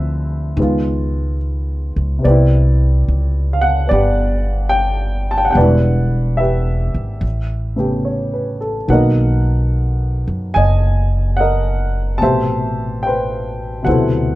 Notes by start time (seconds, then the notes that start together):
Already playing: D2 D3 F3 C4 E4 F4 B4 E5
0.57 C#2 D#3 G#3 B3
0.62 F4
1.96 C#2
2.19 C3 B3
2.24 C2 C4 G4 B4 D5
2.30 E4
3.08 C#2
3.53 F5
3.61 F#5
3.87 B3 D4 D5
3.91 G1 G4 B4
4.69 G5
5.31 A5
5.38 G5
5.45 F#5
5.51 D3 G3 F#5 G5
5.55 E1 B3 B4 D5
5.62 E4
6.37 G4 B4 E5
6.94 G#1
7.21 A1
7.76 C#3 A3 B3 G4
8.05 C#5
8.34 B4
8.61 A4
8.88 B1 D#3 A#3 B3 F#4 A#4 F#5
8.92 D#5
10.27 F#2
10.54 F#1 D#5 G#5
11.37 D#5 F#5
11.41 A#4
12.18 C3 A3 A5
12.22 A1 B2 G4 C5 E5
13.03 C5 G5
13.07 B4
13.83 D2 B2 C3 F#3 F#5
13.88 E4 A4 C5